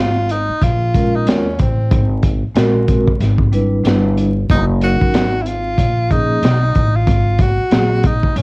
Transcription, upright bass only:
Already playing: G#1
0.49 muted upright bass stroke
0.62 A#1
1.26 D#2
1.60 A1
1.91 G#1
2.43 muted upright bass stroke
2.55 A#1
3.07 muted upright bass stroke
3.20 G#1
3.84 G1
4.50 F#1
5.13 G#1
5.78 A#1
6.42 B1
6.75 A1
7.07 G#1
7.59 muted upright bass stroke
7.72 A#1
8.23 muted upright bass stroke
8.36 G#1

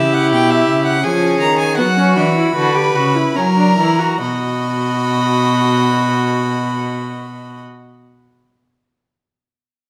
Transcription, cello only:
Already playing: C#3
0.32 B2
0.68 C#3
1.04 F3
1.41 D#3
1.79 F#3
2.17 E3
2.56 D3
2.96 C#3
3.37 F#3
3.78 E3
4.21 B2

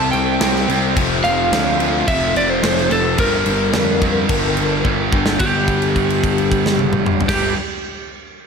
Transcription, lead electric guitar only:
Already playing: A5
0.12 G5
1.24 F5
2.08 E5
2.37 D5
2.50 C5
2.92 A4
3.20 A#4
5.41 G4
7.29 G4

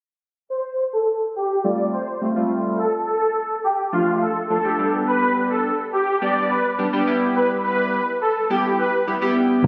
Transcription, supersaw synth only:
0.50 C5
0.93 A4
1.36 G4
1.64 D5
1.93 C5
2.79 A4
3.07 A4
3.64 G4
3.93 F4
4.21 A4
4.50 A4
5.07 B4
5.50 A4
5.93 G4
6.21 D5
6.50 B4
7.36 B4
7.64 B4
8.21 A4
8.50 G4
8.78 B4

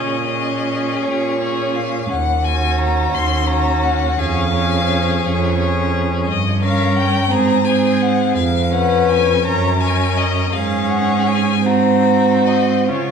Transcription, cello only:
Already playing: A#2
1.04 A#2
2.11 D#2
3.13 D#2
4.19 F2
5.24 F2
6.28 G2
7.30 G#2
8.35 F2
9.46 F#2
10.53 G#2
12.89 C#3

